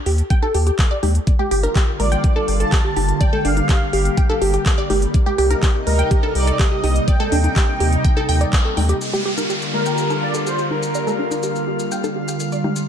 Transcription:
0.06 analog synth bass D#2, synth pluck G4, open hi-hat
0.18 closed hi-hat
0.30 synth pluck G5, kick, closed hi-hat
0.42 synth pluck A4, high conga
0.54 analog synth bass D#2, synth pluck G4, open hi-hat
0.67 synth pluck G4, closed hi-hat
0.79 kick, clap, closed hi-hat
0.91 synth pluck D5
1.03 analog synth bass D#2, synth pluck G4, open hi-hat, high conga, low conga
1.15 closed hi-hat
1.27 analog synth pad D3 G3 A#3 F4, kick, closed hi-hat
1.39 synth pluck G4, low conga
1.51 analog synth bass G1, synth pluck G4, open hi-hat
1.63 synth pluck A#4, closed hi-hat, high conga
1.75 synth pluck G4, kick, clap, closed hi-hat
2.00 analog synth bass A1, synth pluck A#4, supersaw synth D5, open hi-hat, low conga
2.12 synth pluck G5, closed hi-hat
2.24 synth pluck G4, kick, closed hi-hat
2.36 synth pluck A4, high conga
2.48 analog synth bass G1, open hi-hat
2.60 synth pluck A4, supersaw synth A5, closed hi-hat
2.72 synth pluck G4, kick, clap, closed hi-hat
2.84 synth pluck G4
2.96 analog synth bass G1, synth pluck G4, open hi-hat, high conga
3.09 closed hi-hat
3.20 analog synth pad G4, synth pluck D5, supersaw synth G5, kick, closed hi-hat
3.33 synth pluck A4, low conga
3.45 analog synth bass G1, synth pluck D4, supersaw synth F5, open hi-hat
3.57 closed hi-hat, high conga
3.69 synth pluck G4, kick, clap, closed hi-hat
3.93 analog synth bass G1, synth pluck G4, open hi-hat
4.05 closed hi-hat
4.17 synth pluck G5, kick, closed hi-hat
4.30 synth pluck A4, high conga
4.42 analog synth bass G1, synth pluck G4, open hi-hat
4.54 synth pluck G4, closed hi-hat
4.66 kick, clap, closed hi-hat
4.78 synth pluck D5
4.90 analog synth bass G1, synth pluck G4, open hi-hat, high conga, low conga
5.02 closed hi-hat
5.14 analog synth pad C3 D#4, kick, closed hi-hat
5.26 synth pluck G4, low conga
5.38 analog synth bass C2, synth pluck G4, open hi-hat
5.50 synth pluck A#4, closed hi-hat, high conga
5.62 synth pluck G4, kick, clap, closed hi-hat
5.87 analog synth bass D2, synth pluck A#4, supersaw synth A#4, open hi-hat, low conga
5.99 synth pluck G5, closed hi-hat
6.11 synth pluck G4, kick, closed hi-hat
6.23 synth pluck A4, high conga
6.35 analog synth bass C2, supersaw synth D5, open hi-hat
6.47 synth pluck A4, closed hi-hat
6.59 synth pluck G4, supersaw synth D#5, kick, clap, closed hi-hat
6.71 synth pluck G4
6.84 analog synth bass C2, synth pluck G4, open hi-hat, high conga
6.96 closed hi-hat
7.08 analog synth pad D#4, synth pluck D5, supersaw synth G5, kick, closed hi-hat
7.20 synth pluck A4, low conga
7.32 analog synth bass D#2, synth pluck D4, open hi-hat
7.44 closed hi-hat, high conga
7.56 synth pluck G4, kick, clap, closed hi-hat
7.80 analog synth bass D#2, synth pluck G4, open hi-hat
7.92 closed hi-hat
8.05 synth pluck G5, kick, closed hi-hat
8.17 synth pluck A4, high conga
8.29 analog synth bass D#2, synth pluck G5, open hi-hat
8.41 synth pluck D5, closed hi-hat
8.53 kick, clap, closed hi-hat
8.65 synth pluck A4
8.77 analog synth bass D#2, synth pluck G5, open hi-hat, high conga, low conga
8.89 synth pluck G4, closed hi-hat
9.01 analog synth pad D3 G3 A#3 F4, synth texture F5 F6, downlifter, maracas
9.13 synth pluck G4, low conga, maracas
9.26 synth pluck G4
9.38 synth pluck A#4, high conga, maracas
9.50 synth pluck G4, maracas
9.62 maracas
9.74 synth pluck A#4, supersaw synth A#4, low conga
9.86 synth pluck G5, maracas
9.98 synth pluck G4, maracas
10.10 synth pluck A4, high conga, maracas
10.22 supersaw synth D5
10.34 synth pluck A4, maracas
10.46 synth pluck G4, supersaw synth C5, maracas
10.58 synth pluck G4, maracas
10.71 synth pluck G4, supersaw synth A#4, high conga
10.83 maracas
10.95 synth pluck D5, maracas
11.07 synth pluck A4, low conga, maracas
11.19 synth pluck D4
11.31 high conga, maracas
11.43 synth pluck G4, maracas
11.56 maracas
11.68 synth pluck G4
11.79 maracas
11.92 synth pluck G5, maracas
12.04 synth pluck A4, high conga, maracas
12.16 synth pluck G4
12.28 synth pluck G4, maracas
12.40 maracas
12.52 synth pluck D5, maracas
12.64 synth pluck G4, high conga, low conga
12.76 maracas

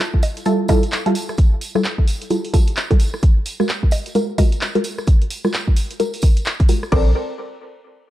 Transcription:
0.00 clap, tambourine
0.14 kick
0.23 open hi-hat, tambourine, high bongo
0.37 closed hi-hat, tambourine
0.46 synth stab G3 E4 F4 A4, closed hi-hat, tambourine
0.68 synth stab G3 E4 F4 A4, kick, open hi-hat, tambourine, high bongo
0.83 closed hi-hat, tambourine
0.92 clap, tambourine
1.06 synth stab G3 E4 F4 A4, closed hi-hat
1.15 open hi-hat, tambourine
1.29 cross-stick, tambourine
1.38 kick, closed hi-hat, tambourine
1.61 open hi-hat, tambourine
1.75 synth stab G3 E4 F4 A4, cross-stick, tambourine
1.84 clap, tambourine
1.98 kick
2.08 open hi-hat, tambourine
2.22 closed hi-hat, tambourine
2.30 synth stab G3 E4 F4 A4, closed hi-hat, tambourine
2.45 open hi-hat
2.53 synth stab G3 E4 F4 A4, kick, open hi-hat, tambourine
2.67 closed hi-hat, tambourine
2.76 clap, tambourine
2.91 synth stab G3 E4 F4 A4, kick, closed hi-hat
3.00 open hi-hat, tambourine
3.13 cross-stick, tambourine
3.23 kick, closed hi-hat, tambourine
3.46 open hi-hat, tambourine
3.60 synth stab G#3 F4 F#4 A#4, cross-stick, tambourine
3.69 clap, tambourine
3.83 kick
3.91 open hi-hat, tambourine, high bongo
4.06 closed hi-hat, tambourine
4.15 synth stab G#3 F4 F#4 A#4, closed hi-hat, tambourine
4.38 synth stab G#3 F4 F#4 A#4, kick, open hi-hat, tambourine, high bongo
4.52 closed hi-hat, tambourine
4.61 clap, tambourine
4.75 synth stab G#3 F4 F#4 A#4, closed hi-hat
4.84 open hi-hat, tambourine
4.98 cross-stick, tambourine
5.07 kick, closed hi-hat, tambourine
5.22 closed hi-hat
5.30 open hi-hat, tambourine
5.44 synth stab G#3 F4 F#4 A#4, cross-stick, tambourine
5.53 clap, tambourine
5.68 kick
5.76 open hi-hat, tambourine
5.91 closed hi-hat, tambourine
6.00 synth stab G#3 F4 F#4 A#4, closed hi-hat, tambourine
6.13 open hi-hat, tambourine
6.22 kick, open hi-hat, tambourine
6.37 closed hi-hat, tambourine
6.45 clap, tambourine
6.60 kick, closed hi-hat
6.69 synth stab G#3 F4 F#4 A#4, open hi-hat, tambourine
6.83 cross-stick, tambourine
6.92 sub bass A#1, synth stab C4 A4 A#4 D5, kick, crash

